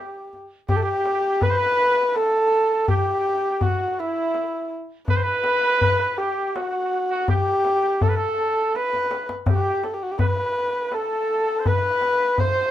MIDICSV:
0, 0, Header, 1, 4, 480
1, 0, Start_track
1, 0, Tempo, 730816
1, 458, Time_signature, 3, 2, 24, 8
1, 8347, End_track
2, 0, Start_track
2, 0, Title_t, "Kamancheh"
2, 0, Program_c, 0, 110
2, 0, Note_on_c, 0, 67, 85
2, 225, Note_off_c, 0, 67, 0
2, 451, Note_on_c, 0, 67, 83
2, 498, Note_on_c, 0, 69, 73
2, 508, Note_off_c, 0, 67, 0
2, 543, Note_on_c, 0, 67, 89
2, 553, Note_off_c, 0, 69, 0
2, 933, Note_on_c, 0, 71, 96
2, 943, Note_off_c, 0, 67, 0
2, 1414, Note_on_c, 0, 69, 94
2, 1424, Note_off_c, 0, 71, 0
2, 1893, Note_on_c, 0, 67, 89
2, 1903, Note_off_c, 0, 69, 0
2, 2378, Note_on_c, 0, 66, 77
2, 2388, Note_off_c, 0, 67, 0
2, 2620, Note_on_c, 0, 64, 76
2, 2630, Note_off_c, 0, 66, 0
2, 3098, Note_off_c, 0, 64, 0
2, 3333, Note_on_c, 0, 71, 90
2, 4054, Note_on_c, 0, 67, 73
2, 4064, Note_off_c, 0, 71, 0
2, 4308, Note_on_c, 0, 66, 78
2, 4318, Note_off_c, 0, 67, 0
2, 4787, Note_on_c, 0, 67, 91
2, 4797, Note_off_c, 0, 66, 0
2, 5269, Note_on_c, 0, 69, 76
2, 5279, Note_off_c, 0, 67, 0
2, 5754, Note_on_c, 0, 71, 84
2, 5764, Note_off_c, 0, 69, 0
2, 6105, Note_off_c, 0, 71, 0
2, 6234, Note_on_c, 0, 67, 80
2, 6459, Note_on_c, 0, 69, 65
2, 6469, Note_off_c, 0, 67, 0
2, 6523, Note_on_c, 0, 67, 62
2, 6533, Note_off_c, 0, 69, 0
2, 6585, Note_on_c, 0, 66, 72
2, 6594, Note_off_c, 0, 67, 0
2, 6639, Note_on_c, 0, 67, 76
2, 6649, Note_off_c, 0, 66, 0
2, 6697, Note_off_c, 0, 67, 0
2, 6707, Note_on_c, 0, 71, 88
2, 7185, Note_on_c, 0, 69, 88
2, 7194, Note_off_c, 0, 71, 0
2, 7668, Note_on_c, 0, 71, 93
2, 7677, Note_off_c, 0, 69, 0
2, 8141, Note_on_c, 0, 72, 91
2, 8151, Note_off_c, 0, 71, 0
2, 8347, Note_off_c, 0, 72, 0
2, 8347, End_track
3, 0, Start_track
3, 0, Title_t, "Trumpet"
3, 0, Program_c, 1, 56
3, 0, Note_on_c, 1, 67, 89
3, 189, Note_off_c, 1, 67, 0
3, 452, Note_on_c, 1, 67, 72
3, 540, Note_off_c, 1, 67, 0
3, 546, Note_on_c, 1, 67, 67
3, 593, Note_off_c, 1, 67, 0
3, 599, Note_on_c, 1, 67, 52
3, 645, Note_off_c, 1, 67, 0
3, 648, Note_on_c, 1, 67, 59
3, 691, Note_off_c, 1, 67, 0
3, 695, Note_on_c, 1, 67, 50
3, 735, Note_off_c, 1, 67, 0
3, 739, Note_on_c, 1, 67, 66
3, 785, Note_off_c, 1, 67, 0
3, 789, Note_on_c, 1, 67, 52
3, 838, Note_off_c, 1, 67, 0
3, 843, Note_on_c, 1, 67, 66
3, 929, Note_on_c, 1, 71, 80
3, 939, Note_off_c, 1, 67, 0
3, 988, Note_on_c, 1, 72, 67
3, 998, Note_off_c, 1, 71, 0
3, 1034, Note_on_c, 1, 71, 85
3, 1044, Note_off_c, 1, 72, 0
3, 1374, Note_off_c, 1, 71, 0
3, 1374, Note_on_c, 1, 71, 56
3, 1408, Note_on_c, 1, 69, 74
3, 1418, Note_off_c, 1, 71, 0
3, 1893, Note_off_c, 1, 69, 0
3, 1896, Note_on_c, 1, 67, 70
3, 1942, Note_off_c, 1, 67, 0
3, 1947, Note_on_c, 1, 67, 48
3, 1983, Note_off_c, 1, 67, 0
3, 1987, Note_on_c, 1, 67, 53
3, 2037, Note_off_c, 1, 67, 0
3, 2054, Note_on_c, 1, 67, 43
3, 2096, Note_off_c, 1, 67, 0
3, 2099, Note_on_c, 1, 67, 49
3, 2142, Note_off_c, 1, 67, 0
3, 2152, Note_on_c, 1, 67, 45
3, 2194, Note_off_c, 1, 67, 0
3, 2202, Note_on_c, 1, 67, 55
3, 2243, Note_off_c, 1, 67, 0
3, 2255, Note_on_c, 1, 67, 46
3, 2294, Note_off_c, 1, 67, 0
3, 2302, Note_on_c, 1, 67, 53
3, 2342, Note_off_c, 1, 67, 0
3, 2388, Note_on_c, 1, 66, 67
3, 2623, Note_on_c, 1, 64, 61
3, 2633, Note_off_c, 1, 66, 0
3, 3100, Note_off_c, 1, 64, 0
3, 3345, Note_on_c, 1, 71, 80
3, 3390, Note_on_c, 1, 72, 64
3, 3400, Note_off_c, 1, 71, 0
3, 3437, Note_on_c, 1, 71, 92
3, 3446, Note_off_c, 1, 72, 0
3, 4063, Note_on_c, 1, 67, 69
3, 4073, Note_off_c, 1, 71, 0
3, 4297, Note_off_c, 1, 67, 0
3, 4301, Note_on_c, 1, 66, 66
3, 4344, Note_off_c, 1, 66, 0
3, 4351, Note_on_c, 1, 66, 45
3, 4394, Note_off_c, 1, 66, 0
3, 4399, Note_on_c, 1, 66, 60
3, 4441, Note_off_c, 1, 66, 0
3, 4445, Note_on_c, 1, 66, 45
3, 4490, Note_off_c, 1, 66, 0
3, 4495, Note_on_c, 1, 66, 54
3, 4540, Note_off_c, 1, 66, 0
3, 4549, Note_on_c, 1, 66, 48
3, 4592, Note_off_c, 1, 66, 0
3, 4662, Note_on_c, 1, 66, 70
3, 4771, Note_off_c, 1, 66, 0
3, 4789, Note_on_c, 1, 67, 70
3, 4825, Note_off_c, 1, 67, 0
3, 4829, Note_on_c, 1, 67, 48
3, 4873, Note_off_c, 1, 67, 0
3, 4884, Note_on_c, 1, 67, 46
3, 4925, Note_off_c, 1, 67, 0
3, 4932, Note_on_c, 1, 67, 40
3, 4971, Note_off_c, 1, 67, 0
3, 4975, Note_on_c, 1, 67, 44
3, 5019, Note_off_c, 1, 67, 0
3, 5024, Note_on_c, 1, 67, 46
3, 5069, Note_off_c, 1, 67, 0
3, 5082, Note_on_c, 1, 67, 52
3, 5123, Note_off_c, 1, 67, 0
3, 5131, Note_on_c, 1, 67, 51
3, 5172, Note_off_c, 1, 67, 0
3, 5176, Note_on_c, 1, 67, 58
3, 5266, Note_on_c, 1, 69, 70
3, 5276, Note_off_c, 1, 67, 0
3, 5314, Note_on_c, 1, 71, 55
3, 5323, Note_off_c, 1, 69, 0
3, 5363, Note_on_c, 1, 69, 76
3, 5372, Note_off_c, 1, 71, 0
3, 5751, Note_on_c, 1, 71, 75
3, 5761, Note_off_c, 1, 69, 0
3, 6103, Note_off_c, 1, 71, 0
3, 6224, Note_on_c, 1, 67, 56
3, 6277, Note_on_c, 1, 66, 48
3, 6286, Note_off_c, 1, 67, 0
3, 6315, Note_on_c, 1, 67, 59
3, 6325, Note_off_c, 1, 66, 0
3, 6460, Note_off_c, 1, 67, 0
3, 6694, Note_on_c, 1, 71, 62
3, 6740, Note_off_c, 1, 71, 0
3, 6761, Note_on_c, 1, 71, 43
3, 6799, Note_off_c, 1, 71, 0
3, 6808, Note_on_c, 1, 71, 46
3, 6845, Note_off_c, 1, 71, 0
3, 6849, Note_on_c, 1, 71, 44
3, 6892, Note_off_c, 1, 71, 0
3, 6902, Note_on_c, 1, 71, 45
3, 6941, Note_off_c, 1, 71, 0
3, 6945, Note_on_c, 1, 71, 36
3, 6989, Note_off_c, 1, 71, 0
3, 7009, Note_on_c, 1, 71, 38
3, 7046, Note_off_c, 1, 71, 0
3, 7051, Note_on_c, 1, 71, 39
3, 7092, Note_off_c, 1, 71, 0
3, 7108, Note_on_c, 1, 71, 53
3, 7180, Note_on_c, 1, 69, 67
3, 7190, Note_off_c, 1, 71, 0
3, 7616, Note_on_c, 1, 72, 54
3, 7626, Note_off_c, 1, 69, 0
3, 7658, Note_on_c, 1, 71, 75
3, 7668, Note_off_c, 1, 72, 0
3, 8097, Note_off_c, 1, 71, 0
3, 8097, Note_on_c, 1, 71, 50
3, 8139, Note_on_c, 1, 72, 81
3, 8149, Note_off_c, 1, 71, 0
3, 8347, Note_off_c, 1, 72, 0
3, 8347, End_track
4, 0, Start_track
4, 0, Title_t, "Tombak"
4, 217, Note_on_c, 9, 62, 26
4, 283, Note_off_c, 9, 62, 0
4, 451, Note_on_c, 9, 64, 82
4, 517, Note_off_c, 9, 64, 0
4, 693, Note_on_c, 9, 63, 58
4, 759, Note_off_c, 9, 63, 0
4, 930, Note_on_c, 9, 64, 80
4, 996, Note_off_c, 9, 64, 0
4, 1415, Note_on_c, 9, 63, 57
4, 1481, Note_off_c, 9, 63, 0
4, 1893, Note_on_c, 9, 64, 81
4, 1958, Note_off_c, 9, 64, 0
4, 2371, Note_on_c, 9, 64, 85
4, 2437, Note_off_c, 9, 64, 0
4, 2853, Note_on_c, 9, 63, 56
4, 2919, Note_off_c, 9, 63, 0
4, 3336, Note_on_c, 9, 64, 88
4, 3402, Note_off_c, 9, 64, 0
4, 3571, Note_on_c, 9, 63, 70
4, 3637, Note_off_c, 9, 63, 0
4, 3819, Note_on_c, 9, 64, 83
4, 3885, Note_off_c, 9, 64, 0
4, 4307, Note_on_c, 9, 63, 70
4, 4372, Note_off_c, 9, 63, 0
4, 4782, Note_on_c, 9, 64, 97
4, 4848, Note_off_c, 9, 64, 0
4, 5022, Note_on_c, 9, 63, 63
4, 5088, Note_off_c, 9, 63, 0
4, 5264, Note_on_c, 9, 64, 93
4, 5329, Note_off_c, 9, 64, 0
4, 5507, Note_on_c, 9, 62, 25
4, 5572, Note_off_c, 9, 62, 0
4, 5749, Note_on_c, 9, 63, 46
4, 5814, Note_off_c, 9, 63, 0
4, 5868, Note_on_c, 9, 62, 60
4, 5933, Note_off_c, 9, 62, 0
4, 5983, Note_on_c, 9, 63, 69
4, 6049, Note_off_c, 9, 63, 0
4, 6103, Note_on_c, 9, 62, 83
4, 6168, Note_off_c, 9, 62, 0
4, 6215, Note_on_c, 9, 64, 105
4, 6281, Note_off_c, 9, 64, 0
4, 6460, Note_on_c, 9, 63, 60
4, 6525, Note_off_c, 9, 63, 0
4, 6693, Note_on_c, 9, 64, 101
4, 6759, Note_off_c, 9, 64, 0
4, 7170, Note_on_c, 9, 63, 63
4, 7236, Note_off_c, 9, 63, 0
4, 7656, Note_on_c, 9, 64, 90
4, 7721, Note_off_c, 9, 64, 0
4, 7892, Note_on_c, 9, 63, 63
4, 7958, Note_off_c, 9, 63, 0
4, 8131, Note_on_c, 9, 64, 84
4, 8197, Note_off_c, 9, 64, 0
4, 8347, End_track
0, 0, End_of_file